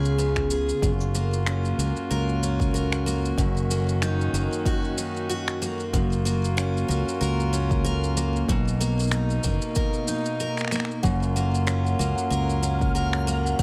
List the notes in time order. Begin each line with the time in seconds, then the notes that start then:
Already playing: C#2 C#3 B3 F4 G#4
0.05 shaker
0.18 B3, shaker
0.36 finger snap, kick, shaker
0.50 G#4, shaker
0.69 shaker
0.82 F#1 F#2 A#3 F4 F#4, kick, shaker
1.00 shaker
1.15 A#3, shaker
1.33 shaker
1.46 C#4, finger snap, shaker
1.65 shaker
1.78 C#2 A#3, shaker
1.97 shaker
2.11 C#2 A#4, shaker
2.29 shaker
2.43 C#4, shaker
2.60 kick, shaker
2.74 A#4, shaker
2.92 finger snap, shaker
3.06 A#3, shaker
3.25 shaker
3.36 F#1 F#2 D#3 C#4, kick, shaker
3.57 shaker
3.71 A#3, shaker
3.89 shaker
4.02 D#4, finger snap, shaker
4.21 shaker
4.33 F#1 A#3, shaker
4.53 shaker
4.66 F#4, kick, shaker
4.85 shaker
4.98 D#4, shaker
5.17 shaker
5.29 F#4, shaker
5.48 finger snap, shaker
5.62 A#3, shaker
5.80 shaker
5.93 F#1 F#2 A#3 F4 F#4, kick, shaker
6.12 shaker
6.25 A#3, shaker
6.45 shaker
6.57 C#4, finger snap, shaker
6.77 shaker
6.88 C#2 A#3, shaker
7.08 shaker
7.21 C#2 A#4, shaker
7.40 shaker
7.53 C#4, shaker
7.71 kick, shaker
7.84 A#4, shaker
8.04 shaker
8.17 A#3, shaker
8.36 shaker
8.49 B1 B2 D#4, kick, shaker
8.68 shaker
8.81 A#3, shaker
8.99 shaker
9.02 shaker
9.03 shaker
9.05 shaker
9.07 shaker
9.10 D#4, finger snap, shaker
9.12 shaker
9.30 shaker
9.44 F#1 A#3, kick, shaker
9.62 shaker
9.75 A#4, kick, shaker
9.94 shaker
10.08 D#4, shaker
10.26 shaker
10.40 A#4, shaker
10.57 finger snap, shaker
10.61 finger snap
10.65 finger snap
10.68 finger snap
10.71 A#3, finger snap, shaker
10.76 finger snap
10.80 finger snap
10.85 finger snap
10.91 shaker
11.02 F#1 F#2 F#3 F4 F5 F#5 F6, kick, shaker
11.23 shaker
11.35 A#3 F#5, shaker
11.55 shaker
11.67 C#4, finger snap, shaker
11.85 F#5, shaker
11.99 C#2 A#3, shaker
12.16 F#5, shaker
12.30 C#2 A#4, shaker
12.50 shaker
12.63 C#4 F#5, shaker
12.81 kick, shaker
12.95 A#4 F#5, shaker
13.13 finger snap, shaker
13.27 A#3, shaker
13.45 F#5, shaker
13.59 F#1 F#2 D#3 C#4, kick, shaker